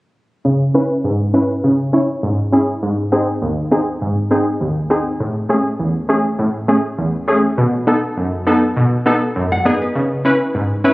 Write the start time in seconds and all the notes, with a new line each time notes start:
0.45 C#3
0.74 C#4 E4 B4
1.04 G#2
1.34 C#4 E4 B4
1.64 C#3
1.93 C#4 E4 C#5
2.23 G#2
2.52 C#4 E4 G#4
2.83 G#2
3.12 C4 D#4 G#4
3.42 D#2
3.71 C4 D#4 G#4
4.02 G#2
4.31 C4 D#4 G#4
4.61 D#2
4.90 C4 D#4 G#4
5.20 A2
5.49 A3 C#4 G#4
5.79 E2
6.09 A3 C#4 G#4
6.39 A2
6.68 A3 C#4 G#4
6.98 E2
7.28 A3 C#4 G#4
7.58 B2
7.87 B3 D#4 A4
8.17 F#2
8.47 B3 D#4 A4
8.77 B2
9.06 B3 D#4 A4
9.36 F#2
9.52 F#5
9.65 B3 D#4 G#4 D#5
9.81 B4
9.95 C#3
10.25 C#4 E4 B4
10.55 G#2
10.84 C#4 E4 B4